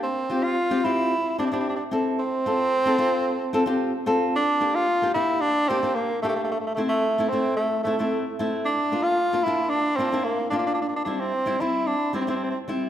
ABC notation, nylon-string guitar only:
X:1
M:4/4
L:1/16
Q:1/4=112
K:Gdor
V:1 name="Nylon-string guitar"
z2 [CFG]2 z [CFG] [CFG]2 z2 [CEG] [CEG]2 z [CEA]2 | z2 [CFA]2 z [CFA] [CFA]2 z2 [CFA] [CFG]2 z [CFA]2 | z2 [B,DG]2 z [B,DG] [B,DG]2 z2 [B,DG] [B,DG]2 z [B,DG]2 | z2 [A,CE]2 z [A,CE] [A,CE]2 z2 [A,CE] [A,CE]2 z [A,CE]2 |
z2 [B,DF]2 z [B,DF] [B,DF]2 z2 [B,DF] [B,DE]2 z [B,DF]2 | z2 [G,CE]2 z [G,CE] [G,CE]2 z2 [G,CE] [G,CE]2 z [G,CE]2 |]